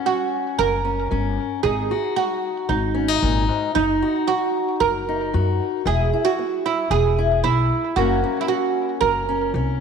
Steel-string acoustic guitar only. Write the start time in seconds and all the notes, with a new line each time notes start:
Already playing: C#4
0.06 F#3
0.58 C#3
0.85 C#4
1.11 F#3 C#4
1.64 G#2 D#4
1.91 F#4
2.16 G#3
2.69 D#3
2.95 C#4
3.08 D#4
3.22 A#2
3.48 G#2
3.75 F#2 D#4
4.02 F#4
4.29 F#3
5.09 D#4
5.33 F#3 F#4
5.86 E3 E4
6.13 E4
6.39 B3
6.91 B2
7.18 E4
7.43 B3
7.97 F#2 F#3 A#3 C#4
8.24 C#4
8.48 F#3
9.01 C#3
9.29 C#4
9.55 F#3 C#4